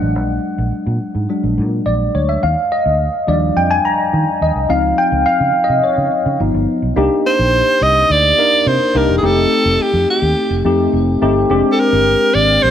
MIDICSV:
0, 0, Header, 1, 5, 480
1, 0, Start_track
1, 0, Key_signature, -3, "minor"
1, 0, Tempo, 567108
1, 135, Time_signature, 4, 2, 24, 8
1, 10754, End_track
2, 0, Start_track
2, 0, Title_t, "Alto saxophone"
2, 0, Program_c, 0, 65
2, 6148, Note_on_c, 0, 72, 108
2, 6626, Note_on_c, 0, 75, 126
2, 6639, Note_off_c, 0, 72, 0
2, 6868, Note_on_c, 0, 74, 115
2, 6881, Note_off_c, 0, 75, 0
2, 7345, Note_on_c, 0, 72, 98
2, 7357, Note_off_c, 0, 74, 0
2, 7593, Note_on_c, 0, 70, 86
2, 7605, Note_off_c, 0, 72, 0
2, 7763, Note_off_c, 0, 70, 0
2, 7768, Note_on_c, 0, 68, 71
2, 7834, Note_on_c, 0, 69, 103
2, 7846, Note_off_c, 0, 68, 0
2, 8314, Note_on_c, 0, 67, 97
2, 8327, Note_off_c, 0, 69, 0
2, 8545, Note_off_c, 0, 67, 0
2, 8549, Note_on_c, 0, 67, 93
2, 8989, Note_off_c, 0, 67, 0
2, 9920, Note_on_c, 0, 69, 83
2, 9987, Note_on_c, 0, 70, 109
2, 9999, Note_off_c, 0, 69, 0
2, 10449, Note_on_c, 0, 74, 127
2, 10462, Note_off_c, 0, 70, 0
2, 10688, Note_on_c, 0, 72, 118
2, 10700, Note_off_c, 0, 74, 0
2, 10754, Note_off_c, 0, 72, 0
2, 10754, End_track
3, 0, Start_track
3, 0, Title_t, "Tine electric piano"
3, 0, Program_c, 1, 4
3, 0, Note_on_c, 1, 54, 49
3, 0, Note_on_c, 1, 56, 45
3, 0, Note_on_c, 1, 62, 54
3, 0, Note_on_c, 1, 78, 94
3, 61, Control_c, 1, 64, 127
3, 464, Note_off_c, 1, 78, 0
3, 1081, Note_off_c, 1, 54, 0
3, 1085, Note_off_c, 1, 56, 0
3, 1088, Note_off_c, 1, 62, 0
3, 1091, Note_on_c, 1, 54, 47
3, 1095, Note_on_c, 1, 56, 45
3, 1098, Note_on_c, 1, 62, 55
3, 1309, Note_off_c, 1, 54, 0
3, 1312, Note_off_c, 1, 56, 0
3, 1313, Note_off_c, 1, 62, 0
3, 1573, Note_on_c, 1, 74, 80
3, 1798, Note_off_c, 1, 74, 0
3, 1818, Note_on_c, 1, 73, 76
3, 1937, Note_on_c, 1, 76, 78
3, 1941, Note_off_c, 1, 73, 0
3, 2057, Note_on_c, 1, 77, 90
3, 2060, Note_off_c, 1, 76, 0
3, 2069, Control_c, 1, 64, 0
3, 2231, Control_c, 1, 64, 127
3, 2301, Note_on_c, 1, 75, 93
3, 2304, Note_off_c, 1, 77, 0
3, 2768, Note_on_c, 1, 53, 52
3, 2776, Note_on_c, 1, 55, 54
3, 2778, Note_on_c, 1, 62, 60
3, 2778, Note_on_c, 1, 74, 83
3, 2793, Note_off_c, 1, 75, 0
3, 3019, Note_on_c, 1, 79, 100
3, 3025, Note_off_c, 1, 74, 0
3, 3137, Note_on_c, 1, 80, 112
3, 3141, Note_off_c, 1, 79, 0
3, 3259, Note_on_c, 1, 82, 100
3, 3260, Note_off_c, 1, 80, 0
3, 3367, Note_off_c, 1, 82, 0
3, 3745, Note_on_c, 1, 75, 84
3, 3938, Note_off_c, 1, 53, 0
3, 3943, Note_off_c, 1, 55, 0
3, 3944, Note_off_c, 1, 62, 0
3, 3967, Note_on_c, 1, 53, 52
3, 3972, Note_on_c, 1, 60, 50
3, 3977, Note_on_c, 1, 63, 64
3, 3978, Note_on_c, 1, 77, 103
3, 3988, Note_off_c, 1, 75, 0
3, 3989, Control_c, 1, 64, 0
3, 4151, Control_c, 1, 64, 127
3, 4216, Note_on_c, 1, 79, 104
3, 4224, Note_off_c, 1, 77, 0
3, 4451, Note_on_c, 1, 77, 114
3, 4464, Note_off_c, 1, 79, 0
3, 4774, Note_on_c, 1, 75, 92
3, 4784, Note_off_c, 1, 77, 0
3, 4939, Note_on_c, 1, 73, 79
3, 4940, Note_off_c, 1, 75, 0
3, 5161, Note_off_c, 1, 73, 0
3, 5378, Note_off_c, 1, 53, 0
3, 5381, Note_off_c, 1, 60, 0
3, 5383, Note_off_c, 1, 63, 0
3, 5414, Note_on_c, 1, 53, 52
3, 5417, Note_on_c, 1, 59, 46
3, 5422, Note_on_c, 1, 63, 55
3, 5426, Control_c, 1, 64, 0
3, 5584, Control_c, 1, 64, 127
3, 5871, Note_off_c, 1, 53, 0
3, 5873, Note_off_c, 1, 59, 0
3, 5875, Note_off_c, 1, 63, 0
3, 5891, Note_on_c, 1, 58, 84
3, 5895, Note_on_c, 1, 62, 85
3, 5897, Note_on_c, 1, 63, 73
3, 5902, Note_on_c, 1, 67, 90
3, 5908, Control_c, 1, 64, 0
3, 6039, Control_c, 1, 64, 127
3, 6669, Note_off_c, 1, 58, 0
3, 6671, Note_off_c, 1, 62, 0
3, 6672, Note_off_c, 1, 63, 0
3, 6674, Note_off_c, 1, 67, 0
3, 7089, Note_on_c, 1, 58, 77
3, 7092, Note_on_c, 1, 62, 66
3, 7097, Note_on_c, 1, 63, 69
3, 7100, Note_on_c, 1, 70, 85
3, 7480, Note_off_c, 1, 58, 0
3, 7482, Note_off_c, 1, 62, 0
3, 7484, Note_off_c, 1, 63, 0
3, 7485, Note_off_c, 1, 70, 0
3, 7573, Note_on_c, 1, 58, 68
3, 7575, Note_on_c, 1, 62, 65
3, 7579, Note_on_c, 1, 63, 70
3, 7583, Note_on_c, 1, 67, 74
3, 7769, Note_off_c, 1, 58, 0
3, 7770, Note_off_c, 1, 62, 0
3, 7771, Note_off_c, 1, 63, 0
3, 7773, Note_off_c, 1, 67, 0
3, 7807, Note_on_c, 1, 57, 85
3, 7809, Note_on_c, 1, 60, 71
3, 7811, Note_on_c, 1, 63, 72
3, 7816, Note_on_c, 1, 67, 83
3, 7829, Control_c, 1, 64, 0
3, 7967, Control_c, 1, 64, 127
3, 8586, Note_off_c, 1, 57, 0
3, 8587, Note_off_c, 1, 60, 0
3, 8589, Note_off_c, 1, 63, 0
3, 8591, Note_off_c, 1, 67, 0
3, 9013, Note_on_c, 1, 57, 76
3, 9015, Note_on_c, 1, 60, 71
3, 9019, Note_on_c, 1, 63, 67
3, 9022, Note_on_c, 1, 67, 89
3, 9402, Note_off_c, 1, 57, 0
3, 9403, Note_off_c, 1, 60, 0
3, 9405, Note_off_c, 1, 63, 0
3, 9406, Note_off_c, 1, 67, 0
3, 9491, Note_on_c, 1, 57, 88
3, 9496, Note_on_c, 1, 60, 84
3, 9497, Note_on_c, 1, 63, 74
3, 9499, Note_on_c, 1, 67, 99
3, 9687, Note_off_c, 1, 57, 0
3, 9689, Note_off_c, 1, 60, 0
3, 9690, Note_off_c, 1, 63, 0
3, 9691, Note_off_c, 1, 67, 0
3, 9731, Note_on_c, 1, 56, 91
3, 9734, Note_on_c, 1, 60, 82
3, 9737, Note_on_c, 1, 62, 87
3, 9741, Note_on_c, 1, 67, 99
3, 9745, Control_c, 1, 64, 0
3, 9916, Control_c, 1, 64, 127
3, 10508, Note_off_c, 1, 56, 0
3, 10509, Note_off_c, 1, 60, 0
3, 10511, Note_off_c, 1, 62, 0
3, 10513, Note_off_c, 1, 67, 0
3, 10754, End_track
4, 0, Start_track
4, 0, Title_t, "Fingered electric bass"
4, 0, Program_c, 2, 33
4, 14, Note_on_c, 2, 33, 90
4, 131, Note_off_c, 2, 33, 0
4, 131, Note_on_c, 2, 34, 112
4, 313, Note_off_c, 2, 34, 0
4, 493, Note_on_c, 2, 34, 91
4, 584, Note_off_c, 2, 34, 0
4, 731, Note_on_c, 2, 46, 92
4, 823, Note_off_c, 2, 46, 0
4, 970, Note_on_c, 2, 44, 79
4, 1063, Note_off_c, 2, 44, 0
4, 1214, Note_on_c, 2, 34, 78
4, 1336, Note_on_c, 2, 46, 86
4, 1348, Note_off_c, 2, 34, 0
4, 1516, Note_off_c, 2, 46, 0
4, 1573, Note_on_c, 2, 34, 87
4, 1754, Note_off_c, 2, 34, 0
4, 1815, Note_on_c, 2, 38, 86
4, 1996, Note_off_c, 2, 38, 0
4, 2057, Note_on_c, 2, 39, 107
4, 2147, Note_off_c, 2, 39, 0
4, 2417, Note_on_c, 2, 38, 93
4, 2597, Note_off_c, 2, 38, 0
4, 2773, Note_on_c, 2, 39, 99
4, 2955, Note_off_c, 2, 39, 0
4, 3014, Note_on_c, 2, 41, 96
4, 3195, Note_off_c, 2, 41, 0
4, 3499, Note_on_c, 2, 51, 107
4, 3588, Note_off_c, 2, 51, 0
4, 3734, Note_on_c, 2, 39, 93
4, 3825, Note_off_c, 2, 39, 0
4, 3853, Note_on_c, 2, 36, 83
4, 3945, Note_off_c, 2, 36, 0
4, 3973, Note_on_c, 2, 37, 104
4, 4154, Note_off_c, 2, 37, 0
4, 4331, Note_on_c, 2, 37, 94
4, 4423, Note_off_c, 2, 37, 0
4, 4572, Note_on_c, 2, 49, 89
4, 4664, Note_off_c, 2, 49, 0
4, 4817, Note_on_c, 2, 48, 76
4, 4907, Note_off_c, 2, 48, 0
4, 5056, Note_on_c, 2, 49, 75
4, 5147, Note_off_c, 2, 49, 0
4, 5296, Note_on_c, 2, 49, 96
4, 5386, Note_off_c, 2, 49, 0
4, 5417, Note_on_c, 2, 31, 105
4, 5507, Note_off_c, 2, 31, 0
4, 5537, Note_on_c, 2, 31, 104
4, 5627, Note_off_c, 2, 31, 0
4, 5774, Note_on_c, 2, 35, 80
4, 5865, Note_off_c, 2, 35, 0
4, 5894, Note_on_c, 2, 36, 115
4, 5985, Note_off_c, 2, 36, 0
4, 6255, Note_on_c, 2, 34, 91
4, 6435, Note_off_c, 2, 34, 0
4, 6612, Note_on_c, 2, 36, 94
4, 6794, Note_off_c, 2, 36, 0
4, 6854, Note_on_c, 2, 38, 103
4, 7035, Note_off_c, 2, 38, 0
4, 7332, Note_on_c, 2, 48, 111
4, 7424, Note_off_c, 2, 48, 0
4, 7571, Note_on_c, 2, 36, 100
4, 7663, Note_off_c, 2, 36, 0
4, 7689, Note_on_c, 2, 28, 97
4, 7782, Note_off_c, 2, 28, 0
4, 7806, Note_on_c, 2, 29, 116
4, 7990, Note_off_c, 2, 29, 0
4, 8169, Note_on_c, 2, 29, 99
4, 8261, Note_off_c, 2, 29, 0
4, 8406, Note_on_c, 2, 41, 91
4, 8500, Note_off_c, 2, 41, 0
4, 8649, Note_on_c, 2, 39, 90
4, 8742, Note_off_c, 2, 39, 0
4, 8888, Note_on_c, 2, 29, 87
4, 8981, Note_off_c, 2, 29, 0
4, 9008, Note_on_c, 2, 41, 90
4, 9191, Note_off_c, 2, 41, 0
4, 9251, Note_on_c, 2, 29, 104
4, 9433, Note_off_c, 2, 29, 0
4, 9494, Note_on_c, 2, 31, 86
4, 9674, Note_off_c, 2, 31, 0
4, 9733, Note_on_c, 2, 29, 114
4, 9824, Note_off_c, 2, 29, 0
4, 10092, Note_on_c, 2, 31, 94
4, 10273, Note_off_c, 2, 31, 0
4, 10450, Note_on_c, 2, 32, 103
4, 10632, Note_off_c, 2, 32, 0
4, 10693, Note_on_c, 2, 34, 98
4, 10754, Note_off_c, 2, 34, 0
4, 10754, End_track
5, 0, Start_track
5, 0, Title_t, "Muted fingered electric bass strokes"
5, 609, Note_on_c, 9, 29, 44
5, 694, Note_off_c, 9, 29, 0
5, 8287, Note_on_c, 9, 29, 52
5, 8371, Note_off_c, 9, 29, 0
5, 10754, End_track
0, 0, End_of_file